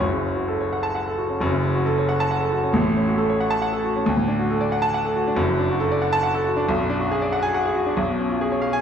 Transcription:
0.00 1.35 F#1 medium
0.00 1.35 F#2 medium
0.13 0.32 C#3 medium
0.26 0.44 C#4 medium
0.36 0.55 F#4 medium
0.48 0.67 A4 medium
0.61 0.79 C#5 medium
0.73 0.90 F#5 medium
0.83 1.01 A5 medium
0.95 1.13 F#5 medium
1.08 1.25 A4 medium
1.18 1.36 F#4 medium
1.29 1.40 C#4 medium
1.40 2.70 F#1 medium
1.40 2.70 F#2 medium
1.52 1.70 C#3 medium
1.64 1.81 C#4 medium
1.75 1.93 F#4 medium
1.86 2.04 A4 medium
1.98 2.15 C#5 medium
2.09 2.26 F#5 medium
2.20 2.37 A5 loud
2.31 2.48 F#5 medium
2.40 2.58 A4 medium
2.52 2.69 F#4 medium
2.63 2.74 C#4 medium
2.73 4.02 A1 medium
2.73 4.02 A2 medium
2.85 3.03 A3 medium
2.97 3.14 C#4 medium
3.07 3.25 F#4 medium
3.18 3.36 A4 medium
3.30 3.47 C#5 medium
3.41 3.58 F#5 medium
3.50 3.68 A5 medium
3.62 3.80 F#5 medium
3.73 3.91 A4 medium
3.84 4.02 F#4 medium
3.96 4.07 C#4 medium
4.06 5.34 D2 loud
4.17 4.35 A2 medium
4.28 4.46 D4 medium
4.39 4.57 F#4 medium
4.51 4.68 A4 medium
4.61 4.78 D5 medium
4.72 4.89 F#5 medium
4.82 5.00 A5 medium
4.94 5.12 F#5 medium
5.05 5.22 A4 medium
5.16 5.33 F#4 medium
5.27 5.38 D4 medium
5.36 6.62 F#1 medium
5.36 6.63 F#2 medium
5.48 5.65 F#3 medium
5.59 5.76 D4 medium
5.70 5.87 F#4 medium
5.80 5.98 A4 medium
5.91 6.09 D5 medium
6.02 6.19 F#5 medium
6.13 6.30 A5 loud
6.23 6.41 F#5 medium
6.34 6.52 A4 medium
6.46 6.63 F#4 medium
6.57 6.67 D4 medium
6.69 7.94 B1 loud
6.79 6.96 F#2 medium
6.90 7.07 D4 medium
7.00 7.17 F#4 medium
7.11 7.28 G#4 medium
7.22 7.39 D5 medium
7.32 7.50 F#5 medium
7.43 7.60 G#5 loud
7.54 7.72 F#5 medium
7.65 7.83 G#4 medium
7.76 7.93 F#4 medium
7.87 7.98 D4 medium
7.97 8.81 B1 loud
8.09 8.26 B2 medium
8.19 8.37 C#4 medium
8.30 8.47 F4 medium
8.41 8.58 G#4 medium
8.52 8.69 C#5 medium
8.62 8.79 F5 medium
8.73 8.81 G#5 loud

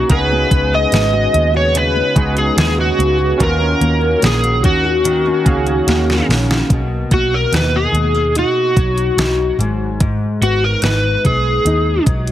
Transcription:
0.00 0.19 A#3 medium
0.00 0.13 C#4 medium
0.00 0.10 D#4 medium
0.00 0.19 D#4 medium
0.00 0.11 F#4 medium
0.00 0.55 F#4 medium
0.00 0.13 A#5 medium
0.09 0.43 C#2 loud
0.09 1.73 C#3 medium
0.09 1.12 B3 medium
0.09 1.12 D#4 medium
0.09 1.13 F#4 medium
0.09 1.13 G#4 medium
0.09 0.75 B4 loud
0.09 kick medium
0.09 closed hi-hat medium
0.32 0.72 B3 medium
0.51 0.84 C#2 medium
0.51 0.92 G#3 medium
0.51 kick medium
0.51 closed hi-hat medium
0.74 1.33 B3 medium
0.74 1.56 D#5 loud
0.92 1.26 G#1 medium
0.92 2.15 G#3 medium
0.92 snare loud
0.92 closed hi-hat medium
1.13 1.54 F#4 medium
1.34 2.00 D#2 medium
1.34 1.95 B3 medium
1.34 closed hi-hat medium
1.54 2.77 F#4 medium
1.54 1.77 C#5 medium
1.74 3.39 C#3 medium
1.74 2.34 B4 medium
1.74 closed hi-hat medium
1.96 2.36 B3 medium
2.15 2.49 C#2 loud
2.15 2.57 G#3 medium
2.15 2.92 B3 medium
2.15 2.93 D#4 medium
2.15 2.93 F#4 medium
2.15 2.94 G#4 medium
2.15 kick loud
2.15 closed hi-hat medium
2.37 2.97 B3 medium
2.37 2.58 G#4 medium
2.37 closed hi-hat soft
2.57 2.90 D#2 medium
2.57 3.49 G#3 medium
2.57 2.80 G#4 medium
2.57 snare loud
2.57 closed hi-hat medium
2.78 3.18 F#4 medium
2.78 3.43 F#4 medium
2.98 3.32 C#2 medium
2.98 3.48 B3 medium
2.98 closed hi-hat medium
3.18 4.43 F#4 medium
3.38 3.73 D#2 loud
3.38 5.04 D#3 medium
3.38 4.41 C#4 medium
3.38 4.41 F4 medium
3.38 4.42 F#4 medium
3.38 4.42 A#4 medium
3.38 kick medium
3.38 closed hi-hat medium
3.43 4.25 A#4 medium
3.60 4.00 C#4 medium
3.81 4.14 D#2 medium
3.81 4.22 A#3 medium
3.81 closed hi-hat medium
4.01 4.62 C#4 medium
4.22 4.64 A#1 medium
4.22 5.46 A#3 medium
4.22 4.65 G#4 medium
4.22 snare loud
4.22 closed hi-hat medium
4.43 4.84 F#4 medium
4.43 closed hi-hat soft
4.64 5.30 D#2 medium
4.64 5.25 C#4 medium
4.64 6.26 F#4 medium
4.64 kick medium
4.64 closed hi-hat medium
4.85 6.10 F#4 medium
5.04 6.72 D#3 medium
5.04 closed hi-hat medium
5.26 5.67 C#4 medium
5.45 5.79 C#2 medium
5.45 5.88 A#3 medium
5.45 6.22 C#4 medium
5.45 6.23 F#4 medium
5.45 6.23 G#4 medium
5.45 6.23 F5 medium
5.45 kick loud
5.45 closed hi-hat medium
5.67 6.29 C#4 soft
5.67 closed hi-hat soft
5.87 6.20 D#2 medium
5.87 7.12 A#3 medium
5.87 snare medium
5.87 closed hi-hat medium
6.10 6.51 F#4 medium
6.10 snare medium
6.29 6.62 A#1 medium
6.29 6.80 C#4 medium
6.29 snare medium
6.29 open hi-hat soft
6.51 7.53 F#4 medium
6.51 snare medium
6.70 7.03 B1 loud
6.70 9.60 B2 medium
6.70 kick medium
6.70 closed hi-hat medium
7.11 7.44 B1 medium
7.11 7.94 A#3 medium
7.11 7.34 F#4 medium
7.11 kick medium
7.11 closed hi-hat medium
7.34 7.52 A#4 medium
7.52 7.85 D#2 medium
7.52 8.36 D#4 medium
7.52 7.75 B4 loud
7.52 snare loud
7.52 closed hi-hat medium
7.76 8.38 G#4 medium
7.92 8.42 D#2 medium
7.92 8.14 G#3 medium
7.92 closed hi-hat medium
8.14 9.67 A#3 soft
8.35 9.17 D#4 medium
8.35 9.57 F#4 medium
8.35 closed hi-hat medium
8.76 9.09 B1 medium
8.76 10.04 F#3 medium
8.76 kick medium
8.76 closed hi-hat medium
8.98 closed hi-hat soft
9.17 9.50 B1 medium
9.17 10.83 D#4 medium
9.17 snare loud
9.17 closed hi-hat medium
9.58 10.25 G#1 medium
9.58 10.00 G#2 medium
9.58 closed hi-hat medium
10.00 12.32 G#2 medium
10.00 kick loud
10.00 closed hi-hat medium
10.41 10.74 G#1 medium
10.41 11.24 B3 medium
10.41 10.63 F#4 medium
10.41 closed hi-hat medium
10.64 10.84 A#4 medium
10.82 11.15 G#1 medium
10.82 11.65 D#4 medium
10.82 11.22 B4 loud
10.82 snare loud
10.82 closed hi-hat medium
11.25 11.58 B1 medium
11.25 12.32 B3 medium
11.25 12.03 G#4 medium
11.25 kick medium
11.25 closed hi-hat medium
11.65 11.98 D#2 medium
11.65 12.32 D#4 medium
11.65 closed hi-hat medium
12.06 12.32 B1 medium
12.06 12.32 F#3 medium
12.06 kick medium
12.06 closed hi-hat medium
12.27 closed hi-hat soft

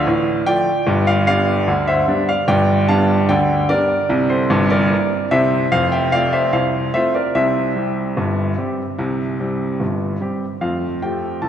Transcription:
0.00 0.43 D5 medium
0.00 0.46 F5 loud
0.07 0.41 A1 medium
0.07 0.41 A2 medium
0.46 0.68 F3 medium
0.46 0.69 A3 medium
0.46 0.69 F4 medium
0.46 1.03 D5 medium
0.46 1.07 G5 loud
0.87 1.21 G1 medium
0.87 1.21 G2 loud
1.07 1.26 D5 medium
1.07 1.26 F5 loud
1.27 1.49 G3 medium
1.27 1.50 B3 medium
1.27 1.50 D4 medium
1.27 1.84 D5 medium
1.27 1.87 F5 loud
1.68 2.02 D2 medium
1.68 2.02 D3 medium
1.87 2.25 C5 medium
1.87 2.28 E5 loud
2.08 2.30 G3 medium
2.08 2.30 B3 medium
2.08 2.30 D4 medium
2.29 2.47 D5 medium
2.29 2.48 F5 loud
2.48 2.82 G1 medium
2.48 2.82 G2 medium
2.48 2.86 D5 medium
2.48 2.88 G5 loud
2.88 3.10 G3 medium
2.88 3.11 B3 medium
2.88 3.11 D4 medium
2.88 3.26 F5 medium
2.88 3.29 A5 loud
3.29 3.63 D2 medium
3.29 3.63 D3 medium
3.29 3.67 D5 medium
3.29 3.69 G5 loud
3.69 3.91 G3 medium
3.69 3.92 B3 medium
3.69 3.92 D4 medium
3.69 4.26 A#4 medium
3.69 4.30 D5 loud
4.09 4.42 C2 medium
4.09 4.42 C3 loud
4.30 4.68 A4 medium
4.30 4.70 C5 medium
4.50 4.83 G1 loud
4.50 4.83 G2 loud
4.70 5.28 A#4 medium
4.70 5.31 D5 loud
4.90 5.13 A#3 medium
4.90 5.13 C4 medium
4.90 5.13 E4 soft
5.31 5.64 C2 medium
5.31 5.64 C3 loud
5.31 5.70 C5 medium
5.31 5.72 E5 loud
5.72 6.06 F1 medium
5.72 6.06 F2 medium
5.72 5.91 C5 medium
5.72 5.92 F5 loud
5.92 6.12 E5 medium
5.92 6.12 G5 medium
6.12 6.35 A3 medium
6.12 6.35 C4 medium
6.12 6.35 F4 medium
6.12 6.32 D5 medium
6.12 6.33 F5 loud
6.33 6.52 C5 medium
6.33 6.53 E5 loud
6.53 6.88 C2 medium
6.53 6.88 C3 medium
6.53 6.92 C5 medium
6.53 6.94 F5 medium
6.94 7.17 A3 medium
6.94 7.17 C4 medium
6.94 7.17 F4 medium
6.94 7.14 C5 medium
6.94 7.14 E5 loud
7.14 7.34 A#4 medium
7.14 7.35 D5 medium
7.35 7.70 C2 medium
7.35 7.70 C3 medium
7.35 10.18 C5 medium
7.35 10.22 E5 loud
7.76 7.98 G3 medium
7.76 7.99 C4 medium
7.76 7.99 G4 medium
8.17 8.52 G1 medium
8.17 8.52 G2 medium
8.58 8.81 G3 medium
8.58 8.81 C4 medium
8.58 8.81 G4 medium
8.98 9.34 C2 medium
8.98 9.33 C3 medium
9.40 9.62 G3 medium
9.40 9.62 C4 medium
9.40 9.63 G4 medium
9.80 10.15 G1 medium
9.80 10.15 G2 medium
10.21 10.43 G3 medium
10.21 10.44 C4 medium
10.21 10.44 G4 medium
10.61 10.96 F2 medium
10.61 10.85 A3 soft
10.61 11.00 F4 medium
10.61 11.03 F5 medium
11.02 11.25 A3 soft
11.02 11.25 C4 soft
11.02 11.25 F4 soft
11.02 11.41 G4 medium
11.02 11.43 G5 medium
11.42 11.49 C2 medium
11.42 11.49 A4 medium
11.42 11.49 A5 medium

